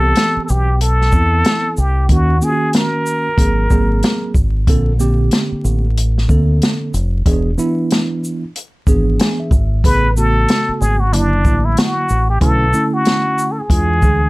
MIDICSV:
0, 0, Header, 1, 6, 480
1, 0, Start_track
1, 0, Tempo, 645161
1, 1562, Time_signature, 4, 2, 24, 8
1, 10635, End_track
2, 0, Start_track
2, 0, Title_t, "Muted trumpet"
2, 0, Program_c, 0, 59
2, 0, Note_on_c, 0, 69, 100
2, 328, Note_off_c, 0, 69, 0
2, 332, Note_on_c, 0, 69, 62
2, 369, Note_on_c, 0, 67, 83
2, 380, Note_off_c, 0, 69, 0
2, 604, Note_off_c, 0, 67, 0
2, 608, Note_on_c, 0, 69, 101
2, 1334, Note_on_c, 0, 67, 79
2, 1345, Note_off_c, 0, 69, 0
2, 1580, Note_on_c, 0, 66, 95
2, 1592, Note_off_c, 0, 67, 0
2, 1813, Note_on_c, 0, 68, 82
2, 1824, Note_off_c, 0, 66, 0
2, 2057, Note_on_c, 0, 70, 81
2, 2068, Note_off_c, 0, 68, 0
2, 3250, Note_off_c, 0, 70, 0
2, 7326, Note_on_c, 0, 71, 102
2, 7547, Note_off_c, 0, 71, 0
2, 7565, Note_on_c, 0, 69, 92
2, 8039, Note_on_c, 0, 68, 86
2, 8050, Note_off_c, 0, 69, 0
2, 8183, Note_on_c, 0, 66, 75
2, 8194, Note_off_c, 0, 68, 0
2, 8279, Note_on_c, 0, 62, 90
2, 8290, Note_off_c, 0, 66, 0
2, 8667, Note_on_c, 0, 64, 75
2, 8679, Note_off_c, 0, 62, 0
2, 8769, Note_on_c, 0, 66, 92
2, 8780, Note_off_c, 0, 64, 0
2, 9146, Note_off_c, 0, 66, 0
2, 9150, Note_on_c, 0, 67, 78
2, 9232, Note_off_c, 0, 67, 0
2, 9236, Note_on_c, 0, 69, 95
2, 9625, Note_on_c, 0, 66, 84
2, 9636, Note_off_c, 0, 69, 0
2, 10057, Note_on_c, 0, 69, 53
2, 10068, Note_off_c, 0, 66, 0
2, 10111, Note_on_c, 0, 68, 82
2, 10123, Note_off_c, 0, 69, 0
2, 10635, Note_off_c, 0, 68, 0
2, 10635, End_track
3, 0, Start_track
3, 0, Title_t, "Tine electric piano"
3, 0, Program_c, 1, 4
3, 0, Note_on_c, 1, 52, 72
3, 0, Note_on_c, 1, 59, 67
3, 0, Note_on_c, 1, 60, 61
3, 0, Note_on_c, 1, 67, 82
3, 511, Note_off_c, 1, 52, 0
3, 514, Note_off_c, 1, 59, 0
3, 514, Note_off_c, 1, 60, 0
3, 517, Note_off_c, 1, 67, 0
3, 835, Note_on_c, 1, 52, 63
3, 840, Note_on_c, 1, 59, 60
3, 846, Note_on_c, 1, 60, 58
3, 851, Note_on_c, 1, 64, 66
3, 1301, Note_off_c, 1, 52, 0
3, 1303, Note_off_c, 1, 59, 0
3, 1306, Note_off_c, 1, 60, 0
3, 1309, Note_off_c, 1, 64, 0
3, 1564, Note_on_c, 1, 51, 64
3, 1568, Note_on_c, 1, 58, 64
3, 1573, Note_on_c, 1, 61, 60
3, 1579, Note_on_c, 1, 66, 70
3, 1734, Note_off_c, 1, 51, 0
3, 1735, Note_off_c, 1, 58, 0
3, 1738, Note_off_c, 1, 61, 0
3, 1741, Note_off_c, 1, 66, 0
3, 1794, Note_on_c, 1, 51, 69
3, 1797, Note_on_c, 1, 58, 65
3, 1804, Note_on_c, 1, 61, 60
3, 1807, Note_on_c, 1, 65, 62
3, 1855, Note_on_c, 1, 66, 80
3, 1863, Note_off_c, 1, 65, 0
3, 2431, Note_off_c, 1, 51, 0
3, 2432, Note_off_c, 1, 58, 0
3, 2435, Note_off_c, 1, 61, 0
3, 2461, Note_off_c, 1, 66, 0
3, 2508, Note_on_c, 1, 54, 65
3, 2511, Note_on_c, 1, 58, 63
3, 2517, Note_on_c, 1, 60, 66
3, 2523, Note_on_c, 1, 68, 73
3, 2717, Note_off_c, 1, 54, 0
3, 2718, Note_off_c, 1, 58, 0
3, 2721, Note_off_c, 1, 60, 0
3, 2725, Note_off_c, 1, 68, 0
3, 2753, Note_on_c, 1, 54, 68
3, 2760, Note_on_c, 1, 58, 72
3, 2765, Note_on_c, 1, 60, 71
3, 2769, Note_on_c, 1, 68, 78
3, 3220, Note_off_c, 1, 54, 0
3, 3223, Note_off_c, 1, 58, 0
3, 3225, Note_off_c, 1, 60, 0
3, 3228, Note_off_c, 1, 68, 0
3, 3478, Note_on_c, 1, 50, 78
3, 3483, Note_on_c, 1, 58, 69
3, 3485, Note_on_c, 1, 60, 78
3, 3493, Note_on_c, 1, 69, 90
3, 3651, Note_off_c, 1, 50, 0
3, 3653, Note_off_c, 1, 58, 0
3, 3654, Note_off_c, 1, 60, 0
3, 3658, Note_off_c, 1, 69, 0
3, 3712, Note_on_c, 1, 50, 77
3, 3716, Note_on_c, 1, 58, 74
3, 3720, Note_on_c, 1, 60, 73
3, 3725, Note_on_c, 1, 67, 96
3, 4349, Note_off_c, 1, 50, 0
3, 4351, Note_off_c, 1, 58, 0
3, 4353, Note_off_c, 1, 60, 0
3, 4356, Note_off_c, 1, 67, 0
3, 4674, Note_on_c, 1, 50, 80
3, 4678, Note_on_c, 1, 58, 65
3, 4685, Note_on_c, 1, 60, 66
3, 4691, Note_on_c, 1, 69, 77
3, 5140, Note_off_c, 1, 50, 0
3, 5142, Note_off_c, 1, 58, 0
3, 5146, Note_off_c, 1, 60, 0
3, 5149, Note_off_c, 1, 69, 0
3, 5399, Note_on_c, 1, 52, 82
3, 5404, Note_on_c, 1, 59, 66
3, 5410, Note_on_c, 1, 62, 67
3, 5412, Note_on_c, 1, 68, 85
3, 5571, Note_off_c, 1, 52, 0
3, 5573, Note_off_c, 1, 59, 0
3, 5576, Note_off_c, 1, 62, 0
3, 5578, Note_off_c, 1, 68, 0
3, 5636, Note_on_c, 1, 52, 88
3, 5638, Note_on_c, 1, 59, 74
3, 5642, Note_on_c, 1, 62, 74
3, 5649, Note_on_c, 1, 64, 93
3, 6271, Note_off_c, 1, 52, 0
3, 6272, Note_off_c, 1, 59, 0
3, 6274, Note_off_c, 1, 62, 0
3, 6278, Note_off_c, 1, 64, 0
3, 6599, Note_on_c, 1, 52, 78
3, 6603, Note_on_c, 1, 59, 69
3, 6609, Note_on_c, 1, 62, 68
3, 6611, Note_on_c, 1, 68, 83
3, 6842, Note_on_c, 1, 80, 62
3, 6976, Note_off_c, 1, 80, 0
3, 6991, Note_on_c, 1, 76, 60
3, 7063, Note_off_c, 1, 52, 0
3, 7065, Note_off_c, 1, 59, 0
3, 7068, Note_off_c, 1, 62, 0
3, 7069, Note_off_c, 1, 68, 0
3, 7301, Note_off_c, 1, 76, 0
3, 7319, Note_on_c, 1, 49, 70
3, 7325, Note_on_c, 1, 57, 56
3, 7330, Note_on_c, 1, 59, 64
3, 7332, Note_on_c, 1, 68, 79
3, 7491, Note_off_c, 1, 49, 0
3, 7494, Note_off_c, 1, 57, 0
3, 7497, Note_off_c, 1, 59, 0
3, 7498, Note_off_c, 1, 68, 0
3, 7561, Note_on_c, 1, 49, 68
3, 7563, Note_on_c, 1, 57, 62
3, 7572, Note_on_c, 1, 59, 61
3, 7575, Note_on_c, 1, 66, 79
3, 8194, Note_off_c, 1, 49, 0
3, 8195, Note_off_c, 1, 57, 0
3, 8199, Note_off_c, 1, 59, 0
3, 8201, Note_off_c, 1, 66, 0
3, 8272, Note_on_c, 1, 50, 68
3, 8278, Note_on_c, 1, 54, 59
3, 8281, Note_on_c, 1, 58, 66
3, 8289, Note_on_c, 1, 64, 75
3, 8479, Note_off_c, 1, 50, 0
3, 8482, Note_off_c, 1, 54, 0
3, 8484, Note_off_c, 1, 58, 0
3, 8487, Note_off_c, 1, 64, 0
3, 8518, Note_on_c, 1, 50, 60
3, 8523, Note_on_c, 1, 54, 54
3, 8523, Note_on_c, 1, 58, 58
3, 8533, Note_on_c, 1, 64, 69
3, 8982, Note_off_c, 1, 50, 0
3, 8985, Note_off_c, 1, 54, 0
3, 8985, Note_off_c, 1, 58, 0
3, 8990, Note_off_c, 1, 64, 0
3, 9228, Note_on_c, 1, 50, 68
3, 9233, Note_on_c, 1, 57, 64
3, 9233, Note_on_c, 1, 61, 59
3, 9241, Note_on_c, 1, 64, 76
3, 9406, Note_off_c, 1, 50, 0
3, 9408, Note_off_c, 1, 57, 0
3, 9408, Note_off_c, 1, 61, 0
3, 9412, Note_off_c, 1, 64, 0
3, 9466, Note_on_c, 1, 50, 67
3, 9474, Note_on_c, 1, 57, 67
3, 9475, Note_on_c, 1, 61, 64
3, 9482, Note_on_c, 1, 64, 78
3, 10106, Note_off_c, 1, 50, 0
3, 10110, Note_off_c, 1, 57, 0
3, 10111, Note_off_c, 1, 61, 0
3, 10114, Note_off_c, 1, 64, 0
3, 10191, Note_on_c, 1, 52, 69
3, 10198, Note_on_c, 1, 56, 60
3, 10199, Note_on_c, 1, 62, 59
3, 10207, Note_on_c, 1, 65, 74
3, 10399, Note_off_c, 1, 52, 0
3, 10402, Note_off_c, 1, 56, 0
3, 10403, Note_off_c, 1, 62, 0
3, 10406, Note_off_c, 1, 65, 0
3, 10435, Note_on_c, 1, 52, 60
3, 10437, Note_on_c, 1, 56, 60
3, 10447, Note_on_c, 1, 62, 55
3, 10452, Note_on_c, 1, 68, 69
3, 10635, Note_off_c, 1, 52, 0
3, 10635, Note_off_c, 1, 56, 0
3, 10635, Note_off_c, 1, 62, 0
3, 10635, Note_off_c, 1, 68, 0
3, 10635, End_track
4, 0, Start_track
4, 0, Title_t, "Fingered electric bass"
4, 0, Program_c, 2, 33
4, 0, Note_on_c, 2, 36, 87
4, 91, Note_off_c, 2, 36, 0
4, 371, Note_on_c, 2, 35, 87
4, 817, Note_off_c, 2, 35, 0
4, 838, Note_on_c, 2, 40, 88
4, 1058, Note_off_c, 2, 40, 0
4, 1324, Note_on_c, 2, 36, 86
4, 1541, Note_off_c, 2, 36, 0
4, 1558, Note_on_c, 2, 39, 87
4, 1778, Note_off_c, 2, 39, 0
4, 2516, Note_on_c, 2, 32, 92
4, 2736, Note_off_c, 2, 32, 0
4, 2761, Note_on_c, 2, 32, 80
4, 2979, Note_off_c, 2, 32, 0
4, 3234, Note_on_c, 2, 32, 69
4, 3455, Note_off_c, 2, 32, 0
4, 3478, Note_on_c, 2, 34, 99
4, 3931, Note_off_c, 2, 34, 0
4, 4200, Note_on_c, 2, 33, 85
4, 4651, Note_off_c, 2, 33, 0
4, 4682, Note_on_c, 2, 38, 77
4, 4900, Note_off_c, 2, 38, 0
4, 5162, Note_on_c, 2, 29, 83
4, 5379, Note_off_c, 2, 29, 0
4, 5400, Note_on_c, 2, 28, 82
4, 5618, Note_off_c, 2, 28, 0
4, 6599, Note_on_c, 2, 32, 71
4, 6818, Note_off_c, 2, 32, 0
4, 7078, Note_on_c, 2, 32, 85
4, 7298, Note_off_c, 2, 32, 0
4, 7323, Note_on_c, 2, 33, 87
4, 7773, Note_off_c, 2, 33, 0
4, 8046, Note_on_c, 2, 32, 83
4, 8287, Note_off_c, 2, 32, 0
4, 8287, Note_on_c, 2, 30, 92
4, 8503, Note_off_c, 2, 30, 0
4, 8516, Note_on_c, 2, 33, 81
4, 8737, Note_off_c, 2, 33, 0
4, 9005, Note_on_c, 2, 33, 75
4, 9221, Note_off_c, 2, 33, 0
4, 9237, Note_on_c, 2, 35, 98
4, 9457, Note_off_c, 2, 35, 0
4, 10192, Note_on_c, 2, 40, 98
4, 10437, Note_off_c, 2, 40, 0
4, 10437, Note_on_c, 2, 38, 84
4, 10635, Note_off_c, 2, 38, 0
4, 10635, End_track
5, 0, Start_track
5, 0, Title_t, "Muted fingered electric bass strokes"
5, 272, Note_on_c, 9, 29, 41
5, 347, Note_off_c, 9, 29, 0
5, 4107, Note_on_c, 9, 29, 37
5, 4182, Note_off_c, 9, 29, 0
5, 7951, Note_on_c, 9, 29, 41
5, 8026, Note_off_c, 9, 29, 0
5, 10635, End_track
6, 0, Start_track
6, 0, Title_t, "Drums"
6, 116, Note_on_c, 9, 42, 72
6, 128, Note_on_c, 9, 38, 95
6, 191, Note_off_c, 9, 42, 0
6, 203, Note_off_c, 9, 38, 0
6, 363, Note_on_c, 9, 82, 50
6, 437, Note_off_c, 9, 82, 0
6, 602, Note_on_c, 9, 42, 98
6, 676, Note_off_c, 9, 42, 0
6, 753, Note_on_c, 9, 38, 27
6, 828, Note_off_c, 9, 38, 0
6, 835, Note_on_c, 9, 82, 45
6, 837, Note_on_c, 9, 36, 76
6, 909, Note_off_c, 9, 82, 0
6, 911, Note_off_c, 9, 36, 0
6, 1076, Note_on_c, 9, 42, 64
6, 1087, Note_on_c, 9, 38, 114
6, 1151, Note_off_c, 9, 42, 0
6, 1162, Note_off_c, 9, 38, 0
6, 1317, Note_on_c, 9, 82, 44
6, 1392, Note_off_c, 9, 82, 0
6, 1556, Note_on_c, 9, 36, 93
6, 1556, Note_on_c, 9, 42, 84
6, 1631, Note_off_c, 9, 36, 0
6, 1631, Note_off_c, 9, 42, 0
6, 1799, Note_on_c, 9, 82, 55
6, 1873, Note_off_c, 9, 82, 0
6, 2032, Note_on_c, 9, 42, 66
6, 2044, Note_on_c, 9, 38, 93
6, 2106, Note_off_c, 9, 42, 0
6, 2118, Note_off_c, 9, 38, 0
6, 2280, Note_on_c, 9, 82, 51
6, 2354, Note_off_c, 9, 82, 0
6, 2513, Note_on_c, 9, 36, 91
6, 2519, Note_on_c, 9, 42, 92
6, 2587, Note_off_c, 9, 36, 0
6, 2593, Note_off_c, 9, 42, 0
6, 2757, Note_on_c, 9, 36, 74
6, 2757, Note_on_c, 9, 82, 42
6, 2831, Note_off_c, 9, 36, 0
6, 2832, Note_off_c, 9, 82, 0
6, 2996, Note_on_c, 9, 42, 64
6, 3007, Note_on_c, 9, 38, 107
6, 3071, Note_off_c, 9, 42, 0
6, 3081, Note_off_c, 9, 38, 0
6, 3232, Note_on_c, 9, 36, 77
6, 3236, Note_on_c, 9, 82, 41
6, 3306, Note_off_c, 9, 36, 0
6, 3310, Note_off_c, 9, 82, 0
6, 3477, Note_on_c, 9, 36, 99
6, 3478, Note_on_c, 9, 42, 82
6, 3551, Note_off_c, 9, 36, 0
6, 3553, Note_off_c, 9, 42, 0
6, 3720, Note_on_c, 9, 82, 51
6, 3794, Note_off_c, 9, 82, 0
6, 3953, Note_on_c, 9, 42, 66
6, 3965, Note_on_c, 9, 38, 94
6, 4028, Note_off_c, 9, 42, 0
6, 4040, Note_off_c, 9, 38, 0
6, 4202, Note_on_c, 9, 82, 51
6, 4277, Note_off_c, 9, 82, 0
6, 4445, Note_on_c, 9, 42, 97
6, 4520, Note_off_c, 9, 42, 0
6, 4597, Note_on_c, 9, 38, 29
6, 4671, Note_off_c, 9, 38, 0
6, 4680, Note_on_c, 9, 36, 83
6, 4683, Note_on_c, 9, 82, 44
6, 4754, Note_off_c, 9, 36, 0
6, 4757, Note_off_c, 9, 82, 0
6, 4924, Note_on_c, 9, 42, 60
6, 4935, Note_on_c, 9, 38, 98
6, 4999, Note_off_c, 9, 42, 0
6, 5009, Note_off_c, 9, 38, 0
6, 5165, Note_on_c, 9, 42, 45
6, 5165, Note_on_c, 9, 82, 45
6, 5239, Note_off_c, 9, 42, 0
6, 5239, Note_off_c, 9, 82, 0
6, 5400, Note_on_c, 9, 36, 90
6, 5402, Note_on_c, 9, 42, 83
6, 5475, Note_off_c, 9, 36, 0
6, 5476, Note_off_c, 9, 42, 0
6, 5643, Note_on_c, 9, 82, 58
6, 5718, Note_off_c, 9, 82, 0
6, 5882, Note_on_c, 9, 42, 63
6, 5893, Note_on_c, 9, 38, 93
6, 5956, Note_off_c, 9, 42, 0
6, 5968, Note_off_c, 9, 38, 0
6, 6132, Note_on_c, 9, 82, 51
6, 6206, Note_off_c, 9, 82, 0
6, 6367, Note_on_c, 9, 42, 93
6, 6442, Note_off_c, 9, 42, 0
6, 6598, Note_on_c, 9, 36, 82
6, 6602, Note_on_c, 9, 82, 44
6, 6673, Note_off_c, 9, 36, 0
6, 6677, Note_off_c, 9, 82, 0
6, 6841, Note_on_c, 9, 42, 69
6, 6852, Note_on_c, 9, 38, 107
6, 6916, Note_off_c, 9, 42, 0
6, 6926, Note_off_c, 9, 38, 0
6, 7075, Note_on_c, 9, 36, 89
6, 7081, Note_on_c, 9, 82, 45
6, 7149, Note_off_c, 9, 36, 0
6, 7156, Note_off_c, 9, 82, 0
6, 7321, Note_on_c, 9, 36, 91
6, 7326, Note_on_c, 9, 42, 85
6, 7395, Note_off_c, 9, 36, 0
6, 7401, Note_off_c, 9, 42, 0
6, 7566, Note_on_c, 9, 82, 57
6, 7640, Note_off_c, 9, 82, 0
6, 7801, Note_on_c, 9, 42, 67
6, 7813, Note_on_c, 9, 38, 102
6, 7876, Note_off_c, 9, 42, 0
6, 7888, Note_off_c, 9, 38, 0
6, 8051, Note_on_c, 9, 82, 48
6, 8125, Note_off_c, 9, 82, 0
6, 8284, Note_on_c, 9, 42, 95
6, 8358, Note_off_c, 9, 42, 0
6, 8517, Note_on_c, 9, 36, 82
6, 8519, Note_on_c, 9, 82, 41
6, 8591, Note_off_c, 9, 36, 0
6, 8594, Note_off_c, 9, 82, 0
6, 8757, Note_on_c, 9, 42, 67
6, 8768, Note_on_c, 9, 38, 106
6, 8831, Note_off_c, 9, 42, 0
6, 8842, Note_off_c, 9, 38, 0
6, 8994, Note_on_c, 9, 82, 45
6, 9069, Note_off_c, 9, 82, 0
6, 9235, Note_on_c, 9, 36, 95
6, 9236, Note_on_c, 9, 42, 80
6, 9309, Note_off_c, 9, 36, 0
6, 9310, Note_off_c, 9, 42, 0
6, 9474, Note_on_c, 9, 82, 56
6, 9549, Note_off_c, 9, 82, 0
6, 9712, Note_on_c, 9, 42, 61
6, 9723, Note_on_c, 9, 38, 94
6, 9786, Note_off_c, 9, 42, 0
6, 9798, Note_off_c, 9, 38, 0
6, 9958, Note_on_c, 9, 82, 53
6, 10032, Note_off_c, 9, 82, 0
6, 10191, Note_on_c, 9, 36, 87
6, 10196, Note_on_c, 9, 42, 101
6, 10265, Note_off_c, 9, 36, 0
6, 10271, Note_off_c, 9, 42, 0
6, 10433, Note_on_c, 9, 82, 44
6, 10434, Note_on_c, 9, 36, 80
6, 10508, Note_off_c, 9, 82, 0
6, 10509, Note_off_c, 9, 36, 0
6, 10635, End_track
0, 0, End_of_file